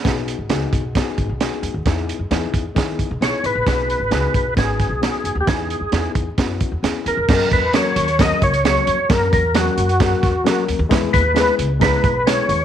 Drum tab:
CC |----------------|----------------|----------------|----------------|
HH |x-x-x-x-x-x-x-x-|x-x-x-x-x-x-x-x-|x-x-x-x-x-x-x-x-|x-x-x-x-x-x-x-x-|
SD |o---o---o---o---|o---o---o---o---|o---o---o-o-o---|o---o---o---o---|
BD |o-----o-o-o-----|o-----o-o-o-----|o-----o-o-o-----|o-----o-o-o-----|

CC |x---------------|----------------|----------------|
HH |--x-x-xxx-xxx-x-|x-x-x-xxx-x-x-x-|x-x-x-x-x-x-x-x-|
SD |o---o---o---o---|o---o---o-o-o---|o---o---o---o---|
BD |o-o-----o-o-----|o-o-----o-o-----|o-o-----o-o-----|